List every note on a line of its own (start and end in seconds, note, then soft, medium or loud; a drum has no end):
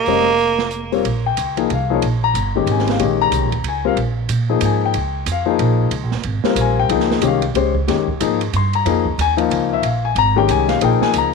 0.00 0.89 A#3 medium
0.06 1.01 F1 medium
0.06 0.25 G#3 medium
0.06 0.26 C#4 soft
0.06 0.25 G4 medium
0.06 0.25 C5 medium
0.06 0.26 D#5 medium
0.06 open hi-hat soft
0.38 open hi-hat soft
0.59 snare soft
0.71 closed hi-hat soft
0.92 1.03 G3 medium
0.92 1.03 C4 medium
0.92 1.03 F4 medium
0.92 1.04 A#4 medium
0.92 1.04 C#5 medium
0.92 open hi-hat soft
1.04 1.36 A#1 medium
1.04 ride medium
1.26 1.67 G5 medium
1.37 1.69 C#2 medium
1.37 hi-hat pedal soft
1.37 ride medium
1.57 1.68 F3 medium
1.57 1.68 A#3 medium
1.57 1.69 D#4 medium
1.57 1.69 G#4 medium
1.57 ride soft
1.70 2.02 C2 medium
1.70 1.91 F5 medium
1.70 ride soft
1.90 2.01 F3 medium
1.90 2.01 A#3 medium
1.90 2.02 D#4 medium
1.90 2.01 G#4 medium
1.90 2.04 C#5 medium
2.02 2.33 A#1 medium
2.02 ride medium
2.24 2.65 A#5 medium
2.34 2.66 G1 medium
2.34 hi-hat pedal medium
2.34 ride medium
2.55 2.98 D#3 medium
2.55 2.98 G#3 medium
2.55 2.98 C#4 medium
2.55 2.98 G4 medium
2.66 2.98 G#1 medium
2.66 ride medium
2.71 2.89 G#5 medium
2.79 snare soft
2.87 3.01 F5 medium
2.87 snare soft
2.87 ride soft
2.99 3.31 A#1 medium
2.99 3.48 D#3 medium
2.99 3.48 G#3 medium
2.99 3.48 C#4 medium
2.99 3.48 G4 medium
2.99 ride medium
3.21 3.63 A#5 loud
3.31 3.42 C2 medium
3.31 hi-hat pedal medium
3.31 ride medium
3.42 3.53 A#1 soft
3.52 3.63 G#1 medium
3.52 kick soft
3.52 ride soft
3.64 3.96 C#2 medium
3.64 ride medium
3.68 3.86 G#5 medium
3.85 3.96 G3 medium
3.85 3.96 C4 medium
3.85 3.96 F4 medium
3.85 3.96 A#4 medium
3.85 3.94 F5 medium
3.96 4.28 A#1 medium
3.96 ride medium
4.29 4.61 A#2 medium
4.29 hi-hat pedal medium
4.29 ride medium
4.49 4.92 F3 medium
4.49 4.92 A#3 medium
4.49 4.92 D#4 medium
4.49 4.92 G#4 medium
4.61 4.93 G#2 medium
4.61 hi-hat pedal medium
4.61 ride medium
4.65 4.83 G#5 medium
4.86 5.26 G5 medium
4.94 5.25 C#2 medium
4.94 ride medium
5.26 5.58 F2 medium
5.26 hi-hat pedal medium
5.26 ride medium
5.32 5.49 F5 medium
5.46 5.89 F3 medium
5.46 5.89 A#3 medium
5.46 5.89 D#4 medium
5.46 5.90 G#4 medium
5.59 5.90 A#1 medium
5.59 ride medium
5.91 6.03 C#2 medium
5.91 ride medium
6.03 6.13 A#1 medium
6.11 6.24 G#1 medium
6.11 snare soft
6.23 6.43 G#1 medium
6.23 ride medium
6.44 6.87 G3 medium
6.44 6.87 C4 medium
6.44 6.87 F4 medium
6.44 6.88 A#4 medium
6.44 muted upright bass stroke soft
6.44 snare soft
6.55 6.88 A#1 medium
6.55 hi-hat pedal medium
6.55 ride medium
6.61 6.79 G#5 medium
6.80 7.21 G5 medium
6.89 7.21 C#2 medium
6.89 7.21 F3 medium
6.89 7.21 A#3 medium
6.89 7.21 D#4 medium
6.89 7.21 G#4 medium
6.89 ride medium
7.00 snare soft
7.11 snare soft
7.21 7.54 C2 medium
7.21 7.40 D#3 medium
7.21 7.40 G#3 medium
7.21 7.41 C#4 medium
7.21 7.41 G4 medium
7.21 hi-hat pedal soft
7.21 ride medium
7.27 7.44 F5 medium
7.42 ride soft
7.54 7.86 C#2 medium
7.54 7.73 G#3 medium
7.54 7.73 C#4 medium
7.54 7.73 G4 medium
7.54 7.74 C5 medium
7.54 ride medium
7.75 kick soft
7.88 8.06 F2 medium
7.88 8.06 D#3 medium
7.88 8.06 G#3 medium
7.88 8.06 C#4 medium
7.88 8.06 G4 medium
7.88 snare soft
7.88 ride medium
8.08 muted upright bass stroke soft
8.08 kick medium
8.20 8.52 G#2 medium
8.20 8.38 F3 medium
8.20 8.39 A#3 medium
8.20 8.39 D#4 medium
8.20 8.39 G#4 medium
8.20 hi-hat pedal medium
8.20 ride medium
8.41 ride soft
8.53 8.84 G2 medium
8.53 8.74 C6 medium
8.53 hi-hat pedal soft
8.53 ride medium
8.73 9.16 A#5 medium
8.73 ride soft
8.85 9.17 F2 medium
8.85 9.03 F3 medium
8.85 9.03 A#3 medium
8.85 9.04 D#4 medium
8.85 9.04 G#4 medium
8.85 ride medium
9.05 kick soft
9.18 9.49 D#2 medium
9.18 9.32 G#5 loud
9.18 hi-hat pedal medium
9.18 ride medium
9.37 9.80 F3 medium
9.37 9.80 A#3 medium
9.37 9.80 D#4 medium
9.37 9.80 F4 medium
9.37 ride soft
9.50 9.82 C#2 medium
9.50 ride medium
9.73 9.84 E5 medium
9.82 10.14 A#1 medium
9.82 10.04 F5 medium
9.82 ride medium
10.05 10.16 G#5 medium
10.15 10.47 G#1 medium
10.15 10.36 A#5 loud
10.15 ride medium
10.36 10.78 D#3 medium
10.36 10.78 G#3 medium
10.36 10.79 C#4 medium
10.36 10.79 G4 medium
10.36 10.49 G5 medium
10.48 10.79 C2 medium
10.48 10.69 G#5 medium
10.48 hi-hat pedal medium
10.48 ride medium
10.69 10.81 F5 medium
10.69 snare soft
10.69 ride soft
10.81 10.99 A#1 medium
10.81 11.29 F3 medium
10.81 11.30 A#3 medium
10.81 11.30 D#4 medium
10.81 11.30 G#4 medium
10.81 11.02 G5 medium
10.81 ride medium
11.01 11.14 G#5 medium
11.01 muted upright bass stroke soft
11.01 snare soft
11.14 11.34 C#2 medium
11.14 hi-hat pedal medium
11.14 ride medium
11.18 11.34 A#5 medium